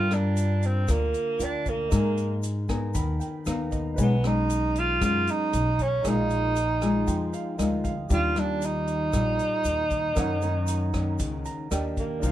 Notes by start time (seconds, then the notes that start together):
Already playing: G2 G3 F4 A#4 D5 G5
0.11 D4 F4 A#4, cross-stick, closed hi-hat, shaker
0.37 closed hi-hat, shaker
0.63 C4, closed hi-hat, shaker
0.88 D2 D3 A#3 D4 F4 A#4, kick, cross-stick, closed hi-hat, shaker
1.14 closed hi-hat, shaker
1.39 D2 F4 A#4 D5 G5, closed hi-hat, shaker
1.44 D4
1.66 A#3, kick, closed hi-hat, shaker
1.88 G#2 G#3 D#4 A#4, kick, cross-stick, closed hi-hat, shaker
1.94 G#5
2.17 closed hi-hat, shaker
2.43 closed hi-hat, shaker
2.69 B3 D#4 A#4 G#5, kick, cross-stick, closed hi-hat, shaker
2.94 D#2 D#3 B5, kick, closed hi-hat, shaker
3.20 G5, closed hi-hat, shaker
3.46 D#2 B3 D#4 A#4 F5, cross-stick, closed hi-hat, shaker
3.71 D#5, kick, closed hi-hat, shaker
3.94 D#4 B4
3.98 B1 B2 G#3 B3 C#4 D#4 C#5 G#5, kick, closed hi-hat, shaker
4.24 G#3 C#4 D#4, cross-stick, closed hi-hat, shaker
4.50 closed hi-hat, shaker
4.76 F4, closed hi-hat, shaker
5.00 F#2 F#3 G#3 C#4 D#4, kick, cross-stick, closed hi-hat, shaker
5.05 F4
5.27 D#4, closed hi-hat, shaker
5.53 B1, closed hi-hat, shaker
5.79 C#4, kick, closed hi-hat, shaker
6.01 A#1 A#2 G#3 D#4 G#4, kick, cross-stick, closed hi-hat, shaker
6.05 D#4 F4 A#4 F5
6.30 closed hi-hat, shaker
6.56 closed hi-hat, shaker
6.82 G#3 D#4 F4 G#5, cross-stick, closed hi-hat, shaker
7.07 F2 F3 G5, kick, closed hi-hat, shaker
7.33 F5, closed hi-hat, shaker
7.58 D2 G#3 D#4 F4 G#4 A#4 D#5 F5, cross-stick, closed hi-hat, shaker
7.84 F5, kick, closed hi-hat, shaker
8.09 D#2 D#3 G3 D4 F4 G4 D5, kick, closed hi-hat, shaker
8.13 F4 F5
8.36 G3 D4 F4, cross-stick, closed hi-hat, shaker
8.62 closed hi-hat, shaker
8.66 D#4
8.87 closed hi-hat, shaker
9.13 A#1 A#2 G3 F4, kick, cross-stick, closed hi-hat, shaker
9.39 closed hi-hat, shaker
9.64 D#2, closed hi-hat, shaker
9.90 kick, closed hi-hat, shaker
10.13 F#2 D#3 A#3 C#4 D#4 A#4 C#5, kick, cross-stick, closed hi-hat, shaker
10.19 F#5
10.42 D#3 A#3 C#4, closed hi-hat, shaker
10.67 closed hi-hat, shaker
10.94 D#3 A#3 C#4, kick, cross-stick, closed hi-hat, shaker
11.19 C#2 C#3, kick, closed hi-hat, shaker
11.45 A#5, closed hi-hat, shaker
11.71 D#2 A#3 D4 G4 A#4 D5 D#5 G5, cross-stick, closed hi-hat, shaker
11.97 A#3, kick, closed hi-hat, shaker
12.20 C2 C3 F3 A#3 D4 D#4 A#4 D5, kick, closed hi-hat, shaker
12.26 F5